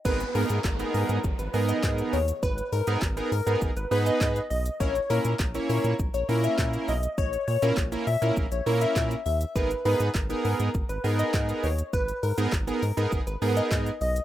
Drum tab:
CC |x---------------|----------------|----------------|----------------|
HH |-xox-xox-xox-xox|-xox-xox-xox-xox|-xox-xox-xox-xox|-xox-xox-xox-xox|
SH |xxxxxxxxxxxxxxxx|xxxxxxxxxxxxxxxx|xxxxxxxxxxxxxxxx|xxxxxxxxxxxxxxxx|
CP |----x-------x---|----x-------x---|----x-------x---|----x-------x---|
SD |----o-------o---|----o-------o---|----o-------o---|----o-------o---|
BD |o---o---o---o---|o---o---o---o---|o---o---o---o---|o---o---o---o---|

CC |----------------|----------------|
HH |-xox-xox-xox-xox|-xox-xox-xox-xox|
SH |xxxxxxxxxxxxxxxx|xxxxxxxxxxxxxxxx|
CP |----x-------x---|----x-------x---|
SD |----o-------o---|----o-------o---|
BD |o---o---o---o---|o---o---o---o---|